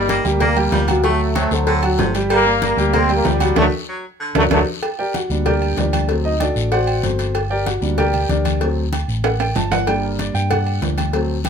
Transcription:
Already playing: G1 D#3 G3 A#3 A#4 D5
0.09 A#3, cowbell, high conga, low agogo, short guiro
0.25 D2 G3 A#3 G4 G5, high conga, short guiro
0.40 G3 A#3 A#4 D5, cowbell, high conga, low conga, low agogo, long guiro
0.56 G3 G4 G5, high conga, low agogo
0.72 D2 G3, cowbell, high conga, low timbale, short guiro
0.88 F#3 F#4 F#5, cowbell, high conga, low agogo, short guiro
1.04 F#3 A3 F#4 F#5, cowbell, high conga, low agogo, long guiro
1.20 high conga
1.35 F#3 A3 A4 C5, cowbell, high conga, low agogo, short guiro
1.51 D2 D3 F#3 A3 A4 C5, short guiro
1.67 D3, cowbell, high conga, low agogo, long guiro
1.83 F#3 F#4 F#5, low agogo
1.98 G1 C3 A3 A4 C5, cowbell, high conga, low timbale, short guiro
2.15 G3 G4 G5, cowbell, low agogo, short guiro
2.30 G3 A#3, cowbell, high conga, low agogo, long guiro
2.46 A#3 A#4 D5, high conga
2.62 G3 A#3, cowbell, high conga, low agogo, short guiro
2.77 D2 G3 G4 G5, high conga, short guiro
2.93 G3 A#3 C4 A#4 D5, cowbell, high conga, low conga, low agogo, long guiro
3.09 G3 A#3 G4 G5, high conga, low agogo
3.25 D2 D3 G3, cowbell, high conga, low timbale, short guiro
3.40 F#3 F#4 F#5, cowbell, high conga, low agogo, short guiro
3.56 D2 D3 F#3 A3 D4 F#4 A4, cowbell, high conga, high timbale, long guiro
3.89 F#3
4.20 D3
4.35 D2 D3 F#3 A3 D4 F#4 A4, cowbell, high conga, high timbale, long guiro
4.50 D2 C3 D3 F#3 A3 D4 F#4 A4, cowbell, high conga, high timbale, long guiro
4.83 cowbell, high conga, low agogo, long guiro
4.99 G4 A#4 D5 G5, high conga
5.14 F#4 F#5, cowbell, high conga, low agogo, short guiro
5.30 D2 G3 A#3 D4, high conga, short guiro
5.46 G4 A#4 D5 G5, cowbell, high conga, low conga, low agogo, long guiro
5.62 high conga, low agogo
5.77 D2 D4 G4 A#4 D5, cowbell, high conga, low timbale, short guiro
5.93 cowbell, high conga, low agogo, short guiro
6.08 F#3 A3 C4, cowbell, high conga, low agogo, long guiro
6.25 D#4 D#5, high conga
6.40 D4 F#4 A4 D5, cowbell, high conga, low agogo, short guiro
6.56 A1, short guiro
6.72 F#4 C5 D5 F#5, cowbell, high conga, low agogo, long guiro
6.87 high conga, low agogo
7.03 G1 C4 F#4 A4 C5, cowbell, high conga, short guiro
7.19 cowbell, low agogo, short guiro
7.35 cowbell, high conga, low agogo, long guiro
7.50 G4 A#4 D5 G5, high conga
7.66 F#4 F#5, cowbell, high conga, low agogo, short guiro
7.81 D2 G3 A#3 D4, high conga, short guiro
7.98 G4 A#4 D5 G5, cowbell, high conga, low conga, low agogo, long guiro
8.13 high conga, low conga, low agogo
8.29 D2 D4 G4 A#4 D5, cowbell, high conga, short guiro
8.45 cowbell, high conga, low agogo, short guiro
8.61 F#3 A3 C4, cowbell, high conga, low agogo, long guiro
8.77 high conga
8.93 cowbell, high conga, low agogo, short guiro
9.08 A1, high conga, short guiro
9.24 F#5, cowbell, high timbale, low agogo, long guiro
9.40 G5, high conga, high timbale, low agogo
9.56 G1 A5, cowbell, high conga, low timbale, short guiro
9.71 F#5, cowbell, high conga, low timbale, low agogo, short guiro
9.87 G3 A#3 D4 G5, cowbell, high conga, low agogo, long guiro
10.03 A#4, high conga
10.19 D5, cowbell, high conga, low agogo, short guiro
10.34 G2 G5, high conga, short guiro
10.50 F#5, cowbell, high conga, low conga, low agogo, long guiro
10.66 high conga, low agogo
10.82 D2, cowbell, high conga, low timbale, short guiro
10.98 cowbell, high conga, low agogo, short guiro
11.13 F#3 A3 C4, cowbell, high conga, low agogo, long guiro
11.29 high conga
11.45 cowbell, high conga, low agogo, short guiro

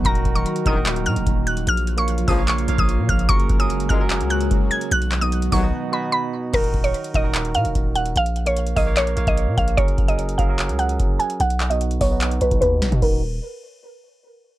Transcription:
Already playing: D#3 F#3 F#4
0.04 D#1 D#3 A#3 D#4 F#4 A#4 A#5, kick, closed hi-hat
0.15 closed hi-hat
0.25 D#1, kick, closed hi-hat
0.35 D#3 D#4 F#4 A#4 C#6, closed hi-hat
0.46 closed hi-hat
0.56 closed hi-hat
0.65 D#1 A#1 F#2 D#3 D#4 F#4 A#4 D#6, kick, closed hi-hat
0.75 D#3 D#4 F#4 A#4
0.86 clap, closed hi-hat
0.96 closed hi-hat
1.06 A#2 F6, closed hi-hat
1.16 D#1, closed hi-hat
1.27 D#1, kick, closed hi-hat
1.47 F#6, closed hi-hat
1.57 closed hi-hat
1.67 A#1 C#3 F3 A#3 F4 F6, closed hi-hat
1.77 closed hi-hat
1.87 closed hi-hat
1.97 A#3 A#4 C#5 F5 C#6, closed hi-hat
2.08 closed hi-hat
2.18 closed hi-hat
2.27 A#1 C#2 A#2 F3 A#3 A#4 C#5 F5 D#6, kick, open hi-hat
2.37 A#3 A#4 C#5 F5
2.48 C#6, clap, closed hi-hat
2.58 closed hi-hat
2.68 A#1 A#3 A#4 C#5 F5, closed hi-hat
2.78 A#1 D#6, kick, closed hi-hat
2.89 closed hi-hat
2.99 A#2
3.09 A#1 F6, kick, closed hi-hat
3.19 closed hi-hat
3.28 F#1 C#3 F#3 G#3 C#4 F#4 G#4 A#4 C#6, kick, closed hi-hat
3.40 closed hi-hat
3.49 F#1, kick, closed hi-hat
3.59 F#3 C#4 G#4 A#4 D#6, closed hi-hat
3.70 closed hi-hat
3.80 closed hi-hat
3.89 F#1 C#2 A#2 F#3 G#3 C#4 G#4 A#4 F6, kick, closed hi-hat
3.99 F#3 C#4 G#4 A#4
4.10 clap, closed hi-hat
4.20 C#2, closed hi-hat
4.30 F#6, closed hi-hat
4.41 closed hi-hat
4.51 F#1, kick, closed hi-hat
4.71 G#6, closed hi-hat
4.81 closed hi-hat
4.91 B1 D#3 F#3 B3 F#6, closed hi-hat
5.02 closed hi-hat
5.12 clap, closed hi-hat
5.21 B2 B3 D#4 F#4 D#6, closed hi-hat
5.32 closed hi-hat
5.42 closed hi-hat
5.51 B1 D#2 B2 F#3 B3 D#4 F#4 C#6, kick, open hi-hat
5.62 B2 B3 D#4 F#4
5.92 B2 B3 D#4 F#4 B5
6.12 B5
6.53 D#1 D#3 D#4 F#4 A#4, kick, closed hi-hat, crash
6.64 closed hi-hat
6.74 D#1, kick, closed hi-hat
6.83 D#3 D#4 F#4 A#4 C#5, closed hi-hat
6.94 closed hi-hat
7.04 closed hi-hat
7.14 D#1 D#3 D#4 F#4 A#4 D#5, kick, closed hi-hat
7.24 D#3 D#4 F#4 A#4
7.34 clap, closed hi-hat
7.45 closed hi-hat
7.55 A#2 F5, closed hi-hat
7.65 D#1, closed hi-hat
7.75 D#1, kick, closed hi-hat
7.95 F#5, closed hi-hat
8.06 closed hi-hat
8.16 A#1 F5, closed hi-hat
8.26 closed hi-hat
8.36 closed hi-hat
8.45 A#3 A#4 C#5 F5, closed hi-hat
8.57 closed hi-hat
8.67 closed hi-hat
8.76 A#1 A#3 A#4 C#5 D#5 F5, kick, open hi-hat
8.86 A#3 A#4 C#5 F5
8.96 C#5, clap, closed hi-hat
9.07 closed hi-hat
9.16 A#1 A#3 A#4 C#5 F5, closed hi-hat
9.27 A#1 D#5, kick, closed hi-hat
9.37 closed hi-hat
9.48 A#2
9.58 A#1 F5, kick, closed hi-hat
9.68 closed hi-hat
9.77 F#1 F#3 C#4 G#4 A#4 C#5, kick, closed hi-hat
9.88 closed hi-hat
9.98 F#1, kick, closed hi-hat
10.07 F#3 C#4 G#4 A#4 D#5, closed hi-hat
10.19 closed hi-hat
10.29 closed hi-hat
10.38 F#1 F#3 C#4 G#4 A#4 F5, kick, closed hi-hat
10.48 F#3 C#4 G#4 A#4
10.59 clap, closed hi-hat
10.69 C#2, closed hi-hat
10.79 F#5, closed hi-hat
10.89 closed hi-hat
11.00 F#1, kick, closed hi-hat
11.19 G#5, closed hi-hat
11.30 closed hi-hat
11.40 B1 F#5, closed hi-hat
11.50 closed hi-hat
11.60 clap, closed hi-hat
11.70 B2 B3 D#4 F#4 D#5, closed hi-hat
11.81 closed hi-hat
11.91 closed hi-hat
12.00 B1 B2 B3 D#4 F#4 C#5, kick, open hi-hat
12.10 B2 B3 D#4 F#4
12.21 clap, closed hi-hat
12.31 closed hi-hat
12.41 B1 B2 B3 D#4 F#4 B4, closed hi-hat
12.51 B1, kick, closed hi-hat
12.61 D#2 B4, kick, closed hi-hat
12.82 A#1, snare, closed hi-hat
12.92 B2, kick, closed hi-hat
13.02 D#1 D#3 D#4 F#4 A#4, kick, crash

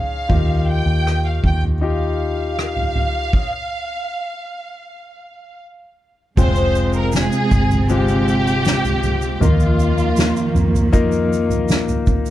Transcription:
Already playing: C#4 D#4 G#4 F5
0.29 D#2 D#3 D#4 F4 G4, kick, floor tom
0.71 G5
0.86 D#2
1.07 cross-stick
1.26 F5
1.44 D#2 G5, kick, floor tom
1.63 floor tom
1.81 D#4 F4 G4 F5
2.59 cross-stick
2.76 floor tom
2.95 floor tom
3.33 kick, crash
6.37 F1 C3 G#3 C4 F4 C5 G5, kick, floor tom, crash, shaker
6.55 shaker
6.75 shaker
6.93 A#4, shaker
7.12 snare, shaker
7.16 G#4
7.32 shaker
7.51 G1, kick, floor tom, shaker
7.70 floor tom, shaker
7.89 G#3 C4 F4 G4, shaker
8.08 shaker
8.28 shaker
8.47 shaker
8.65 snare, shaker
8.84 floor tom, shaker
9.03 floor tom, shaker
9.22 shaker
9.41 D#2 F2 D#3 A#3 D#4 F4 A#4, floor tom, shaker
9.60 shaker
9.80 shaker
9.98 shaker
10.17 snare, shaker
10.36 shaker
10.55 F2, floor tom, shaker
10.74 floor tom, shaker
10.93 A#3 D#4 F4 A#4, kick, shaker
11.12 shaker
11.33 shaker
11.50 floor tom, shaker
11.68 snare, shaker
11.88 floor tom, shaker
12.07 kick, floor tom, shaker
12.26 shaker

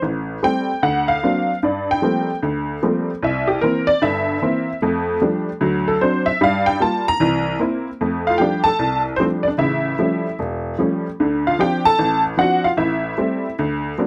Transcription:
0.02 A1
0.43 G3 A3 C4 G5
0.83 D2 F#5
1.08 F5
1.23 F#3 A#3 C4 D4
1.63 G2 D5
1.91 G5
2.02 F3 G3 A3 A#3 C4
2.43 D2
2.83 F3 G3 A3 A#3 C4
3.23 C2 E5
3.48 G4
3.61 E3 A#3 C4 A#4
3.87 D5
4.02 G1 G2 E5
4.42 E3 A#3 C4
4.82 F2 A3
5.21 F3 G3 A3 D4
5.61 D2 F#3
5.88 A4
6.01 F#3 C4 D4 C5
6.26 E5
6.41 G2 G3 F5
6.66 G5
6.80 G3 A#3 F4 A5
7.08 A#5
7.20 C2 E3
7.59 A#3 C4 E4
8.01 F2 A3
8.27 F4 F5
8.38 F3 G3 A3 D4 G4 G5
8.64 A4 A5
8.79 C2
9.16 F3 G3 A3 D4 C5
9.21 C4
9.43 D5
9.48 D4
9.58 A1 C#3 E5
9.62 E4
9.99 F3 G3 A3 C#4
10.39 E1
10.79 F3 G3 A3 C#4
11.20 D2 D3
11.47 F4 F5
11.59 F3 C4 D4 G4 G5
11.85 A4 A5
11.99 A1
12.37 F3 C4 D4 F#4 F#5
12.64 F4 F5
12.77 A1 E4 E5
13.18 G3 A3 C4
13.59 D2
13.98 F#3 A#3 C4 D4

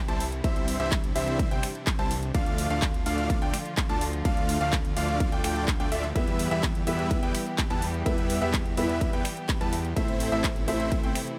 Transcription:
Already playing: C3 E3 G3 E4
0.08 C2 G3 C4 E4 C5 A5, closed hi-hat
0.20 open hi-hat
0.32 closed hi-hat
0.44 C2 G3 C4 D4 E4 C5 E5, kick, closed hi-hat, ride
0.56 closed hi-hat
0.68 open hi-hat
0.80 C2 G3 C4 E4 C5 E5, closed hi-hat
0.92 kick, clap, closed hi-hat, ride
1.04 closed hi-hat
1.15 C2 G3 C4 E4 C5 E5, open hi-hat
1.28 closed hi-hat
1.39 kick, closed hi-hat, ride
1.51 C2 G3 C4 E4 C5 G5, closed hi-hat
1.63 finger snap, open hi-hat
1.75 closed hi-hat
1.87 kick, clap, closed hi-hat, ride
1.99 C2 G3 C4 E4 C5 A5, closed hi-hat
2.11 open hi-hat
2.23 closed hi-hat
2.35 D2 D3 F3 A3 D4 F4 D5 F5, kick, closed hi-hat, ride
2.46 closed hi-hat
2.58 open hi-hat
2.70 D2 A3 D4 F4 D5 F5, closed hi-hat
2.82 kick, clap, closed hi-hat, ride
2.94 closed hi-hat
3.06 D2 A3 D4 F4 D5 F5, open hi-hat
3.18 closed hi-hat
3.30 kick, closed hi-hat, ride
3.42 D2 A3 D4 F4 D5 G5, closed hi-hat
3.54 finger snap, open hi-hat
3.66 closed hi-hat
3.77 kick, clap, closed hi-hat, ride
3.89 D2 A3 D4 F4 D5 A5, closed hi-hat
4.01 open hi-hat
4.13 closed hi-hat
4.25 D2 A3 D4 F4 D5 F5, kick, closed hi-hat, ride
4.37 closed hi-hat
4.49 open hi-hat
4.61 D2 A3 D4 F4 D5 F5, closed hi-hat
4.73 kick, clap, closed hi-hat, ride
4.85 closed hi-hat
4.96 D2 A3 D4 F4 D5 F5, open hi-hat
5.08 closed hi-hat
5.20 kick, closed hi-hat, ride
5.32 D2 A3 D4 F4 D5 G5, closed hi-hat
5.44 D2 A3 D4 F4 D5 G5, finger snap, open hi-hat
5.56 closed hi-hat
5.68 kick, clap, closed hi-hat, ride
5.80 D2 A3 D4 F4 D5 G5, closed hi-hat
5.92 D2 A3 D4 F4 D5 E5, open hi-hat
6.04 closed hi-hat
6.14 E2 E3 G3 B3 E4 G4 B4 E5, kick, closed hi-hat, ride
6.27 closed hi-hat
6.39 open hi-hat
6.51 E2 G3 B3 E4 B4 E5, closed hi-hat
6.63 kick, clap, closed hi-hat, ride
6.75 closed hi-hat
6.86 E2 G3 B3 E4 B4 E5, open hi-hat
6.99 closed hi-hat
7.11 kick, closed hi-hat, ride
7.23 E2 G3 B3 E4 B4 G5, closed hi-hat
7.35 finger snap, open hi-hat
7.46 closed hi-hat
7.58 kick, clap, closed hi-hat, ride
7.70 E2 G3 B3 E4 B4 A5, closed hi-hat
7.82 open hi-hat
7.94 closed hi-hat
8.05 E2 G3 B3 E4 B4 E5, kick, closed hi-hat, ride
8.18 closed hi-hat
8.30 open hi-hat
8.42 E2 G3 B3 E4 B4 E5, closed hi-hat
8.54 kick, clap, closed hi-hat, ride
8.66 closed hi-hat
8.76 E2 G3 B3 E4 B4 E5, open hi-hat
8.89 closed hi-hat
9.01 kick, closed hi-hat, ride
9.13 E2 G3 B3 E4 B4 G5, closed hi-hat
9.25 finger snap, open hi-hat
9.37 closed hi-hat
9.49 kick, clap, closed hi-hat, ride
9.61 E2 G3 B3 E4 B4 A5, closed hi-hat
9.73 open hi-hat
9.85 closed hi-hat
9.95 A1 C3 E3 A3 C4 E4 C5 E5, kick, closed hi-hat, ride
10.08 closed hi-hat
10.20 open hi-hat
10.32 A1 A3 C4 E4 C5 E5, closed hi-hat
10.44 kick, clap, closed hi-hat, ride
10.56 closed hi-hat
10.67 A1 A3 C4 E4 C5 E5, open hi-hat
10.80 closed hi-hat
10.92 kick, closed hi-hat, ride
11.04 A1 A3 C4 E4 C5 G5, closed hi-hat
11.15 finger snap, open hi-hat
11.27 closed hi-hat

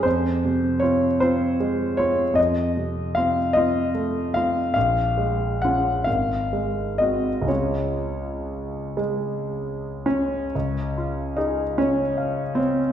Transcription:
0.03 F2 C5
0.45 C3
0.80 C4 F4 C#5
1.20 C4 F4 C5
1.60 G#3
1.97 C4 F4 C#5
2.34 F2 D#5
2.77 C3
3.15 C4 F4 F5
3.53 C4 F4 D#5
3.95 A3
4.34 C4 F4 F5
4.74 A#1 F5
5.17 G#3
5.62 C#4 F4 F#5
6.04 G#1 F5
6.53 G#3
6.98 C4 F#4 D#5
7.42 C#2
7.47 G#3 C#4 F4 C#5
8.97 G#3
10.06 C#4
10.55 C#2
10.98 F4
11.37 D#4 G#4
11.78 C#4 C#5
12.18 F5
12.55 C4 C#5

